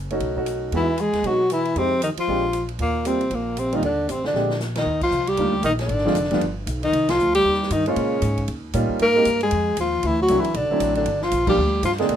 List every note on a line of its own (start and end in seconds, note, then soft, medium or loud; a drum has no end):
0.00 0.18 F#1 medium
0.10 0.35 A3 medium
0.10 0.35 C#4 medium
0.10 0.35 D#4 medium
0.10 0.36 F#4 medium
0.10 ride soft
0.20 0.70 B1 medium
0.20 ride medium
0.36 0.71 A3 medium
0.36 0.71 C#4 medium
0.36 0.71 D#4 medium
0.36 0.71 F#4 medium
0.36 kick medium
0.46 hi-hat pedal soft
0.46 ride medium
0.72 1.11 E2 medium
0.72 1.02 E3 medium
0.72 0.87 G#3 medium
0.72 0.87 B3 medium
0.72 0.87 D#4 medium
0.72 0.87 F#4 medium
0.72 ride soft
0.76 1.02 E4 medium
0.98 1.27 G#3 medium
0.98 1.28 G#4 medium
0.98 hi-hat pedal soft
0.98 ride medium
1.13 1.23 D#2 medium
1.13 snare soft
1.13 ride soft
1.23 1.73 B2 medium
1.23 1.51 F#3 medium
1.23 1.39 G#3 soft
1.23 1.39 B3 soft
1.23 1.39 D#4 soft
1.23 1.40 F#4 medium
1.23 1.51 F#4 loud
1.23 ride medium
1.50 1.79 E3 medium
1.50 1.80 E4 medium
1.50 hi-hat pedal soft
1.50 ride medium
1.65 ride soft
1.75 2.14 F2 medium
1.75 2.02 C3 medium
1.75 1.91 G#3 medium
1.75 1.91 C4 soft
1.75 2.03 C4 loud
1.75 1.91 D#4 medium
1.75 1.91 G4 medium
1.75 ride medium
2.02 2.10 D#3 medium
2.02 2.10 D#4 medium
2.02 hi-hat pedal medium
2.02 ride medium
2.17 2.66 F3 medium
2.17 2.67 F4 medium
2.17 muted upright bass stroke soft
2.17 ride medium
2.28 2.77 A#1 medium
2.28 2.42 G#3 soft
2.28 2.42 C4 soft
2.28 2.43 D4 soft
2.28 2.43 G4 medium
2.53 hi-hat pedal soft
2.53 ride medium
2.69 ride soft
2.79 3.28 D#2 medium
2.79 3.07 A#2 medium
2.79 3.09 A#3 medium
2.79 ride medium
3.05 3.33 C3 medium
3.05 3.19 G3 medium
3.05 3.20 A#3 soft
3.05 3.20 C4 soft
3.05 3.36 C4 medium
3.05 3.20 F4 medium
3.05 hi-hat pedal medium
3.05 ride medium
3.21 ride soft
3.30 3.80 A#1 medium
3.30 3.59 A#2 medium
3.30 ride medium
3.35 3.60 A#3 medium
3.57 3.77 C3 medium
3.57 3.78 C4 medium
3.57 hi-hat pedal medium
3.57 ride medium
3.72 3.83 D#3 medium
3.72 3.82 G3 medium
3.72 3.82 A#3 medium
3.72 3.82 C4 medium
3.72 3.84 D#4 medium
3.72 3.83 F4 medium
3.72 ride soft
3.82 4.07 D#2 medium
3.82 4.10 D3 medium
3.82 4.13 D4 medium
3.82 ride medium
4.08 4.33 A1 medium
4.08 4.24 C3 medium
4.08 4.26 C4 medium
4.08 hi-hat pedal medium
4.08 ride medium
4.24 4.58 D3 medium
4.24 4.60 D4 medium
4.24 snare soft
4.34 4.83 A#1 medium
4.34 4.49 G#3 medium
4.34 4.49 C4 soft
4.34 4.49 D4 soft
4.34 4.49 G4 medium
4.34 snare soft
4.50 snare medium
4.60 snare medium
4.60 hi-hat pedal medium
4.75 5.00 D#3 medium
4.75 5.01 D#4 medium
4.75 snare medium
4.75 ride medium
4.85 5.10 D#2 medium
5.01 5.29 F3 medium
5.01 5.30 F4 medium
5.01 kick medium
5.01 crash medium
5.11 5.37 C2 medium
5.11 hi-hat pedal medium
5.27 5.63 G3 medium
5.27 5.64 G4 loud
5.27 ride soft
5.37 5.62 D2 medium
5.37 5.52 D#3 medium
5.37 5.52 G3 medium
5.37 5.52 A#3 medium
5.37 5.52 D4 medium
5.37 5.52 F4 medium
5.37 ride medium
5.62 5.88 A#1 medium
5.62 5.71 D#3 medium
5.62 5.72 D#4 medium
5.62 hi-hat pedal soft
5.62 ride medium
5.79 6.53 D3 medium
5.79 6.54 D4 medium
5.79 snare soft
5.79 ride soft
5.88 6.14 G#1 medium
5.88 ride medium
5.98 snare soft
6.05 6.15 F3 medium
6.05 6.15 G#3 medium
6.05 6.15 C4 medium
6.05 6.15 D4 medium
6.05 6.15 F4 medium
6.05 snare soft
6.14 6.40 F1 medium
6.14 hi-hat pedal medium
6.14 ride medium
6.24 snare soft
6.31 6.40 F3 medium
6.31 6.41 G3 medium
6.31 6.41 B3 medium
6.31 6.41 D4 medium
6.31 6.41 F4 medium
6.31 snare soft
6.31 ride soft
6.41 6.66 G1 medium
6.41 ride medium
6.66 6.92 B1 medium
6.66 hi-hat pedal medium
6.66 ride medium
6.83 7.11 D#3 medium
6.83 7.12 D#4 loud
6.83 ride soft
6.92 7.17 C2 medium
6.92 ride medium
7.09 7.34 F3 medium
7.09 7.34 F4 loud
7.09 snare medium
7.09 ride medium
7.18 7.43 D2 medium
7.18 hi-hat pedal soft
7.35 7.73 G3 medium
7.35 7.74 G4 loud
7.35 ride medium
7.45 7.70 D#2 medium
7.54 snare soft
7.62 snare soft
7.70 7.95 G2 loud
7.70 7.86 D#3 medium
7.70 7.87 D#4 loud
7.70 hi-hat pedal medium
7.70 ride medium
7.86 8.60 C#3 medium
7.86 8.21 G#3 medium
7.86 8.21 A#3 medium
7.86 8.21 C#4 medium
7.86 8.61 C#4 medium
7.86 8.21 F4 medium
7.86 8.21 C5 medium
7.86 ride soft
7.96 8.21 A#2 medium
7.96 ride medium
8.22 8.47 G#2 medium
8.22 hi-hat pedal medium
8.22 ride medium
8.38 kick medium
8.38 ride soft
8.48 8.73 D#2 medium
8.48 ride medium
8.74 8.88 A#2 medium
8.74 9.00 G3 medium
8.74 9.00 A#3 medium
8.74 9.00 C#4 medium
8.74 9.00 D#4 medium
8.74 9.00 F4 medium
8.74 hi-hat pedal medium
8.74 ride medium
8.89 muted upright bass stroke soft
8.89 kick soft
8.99 9.25 G#2 medium
8.99 9.39 A#3 loud
8.99 9.40 A#4 loud
8.99 ride medium
9.15 9.25 G#3 medium
9.15 9.25 A#3 medium
9.15 9.25 C4 medium
9.15 9.25 D#4 medium
9.15 9.26 G4 medium
9.25 9.51 G2 medium
9.25 hi-hat pedal medium
9.25 ride medium
9.41 9.76 G#3 medium
9.41 9.76 G#4 medium
9.41 ride soft
9.51 9.77 F2 medium
9.51 ride medium
9.77 10.02 D#2 medium
9.77 10.06 F3 medium
9.77 10.08 F4 medium
9.77 hi-hat pedal medium
9.77 ride medium
10.03 10.28 D2 medium
10.03 10.21 E3 medium
10.03 10.22 E4 loud
10.03 ride medium
10.21 10.39 F#3 medium
10.21 10.41 F#4 medium
10.28 10.43 C2 medium
10.28 10.43 F#3 medium
10.28 10.43 A3 medium
10.28 10.43 C4 medium
10.28 10.43 D4 medium
10.28 10.44 E4 medium
10.28 hi-hat pedal medium
10.28 ride medium
10.38 10.56 E3 medium
10.38 10.58 E4 medium
10.44 muted upright bass stroke soft
10.44 ride soft
10.54 10.69 B1 medium
10.54 10.96 D3 medium
10.54 10.96 D4 loud
10.54 ride medium
10.70 11.04 F#3 medium
10.70 11.05 A3 medium
10.70 11.05 C4 medium
10.70 11.05 D4 medium
10.70 11.05 E4 medium
10.70 muted upright bass stroke soft
10.80 11.05 A1 medium
10.80 hi-hat pedal medium
10.80 ride medium
10.95 11.23 D3 medium
10.95 11.25 D4 medium
10.95 ride soft
11.06 11.31 G1 medium
11.06 ride medium
11.21 11.47 F3 medium
11.21 11.48 F4 medium
11.21 snare soft
11.31 11.57 A#1 medium
11.31 hi-hat pedal medium
11.31 ride medium
11.47 11.56 F3 medium
11.47 11.81 G3 medium
11.47 11.56 G3 medium
11.47 11.57 A#3 medium
11.47 11.57 D4 medium
11.47 11.57 F4 medium
11.47 11.82 G4 loud
11.47 kick medium
11.47 crash medium
11.58 11.82 D2 medium
11.83 12.08 G2 medium
11.83 11.91 F3 medium
11.83 11.92 F4 medium
11.83 hi-hat pedal medium
11.83 ride medium
11.92 snare soft
11.98 12.16 D3 medium
11.98 12.16 G#3 medium
11.98 12.16 A#3 medium
11.98 12.16 C4 medium
11.98 12.16 D4 medium
11.98 12.16 G#4 medium
11.98 snare soft
11.98 ride soft
12.09 12.16 A#2 medium
12.09 ride medium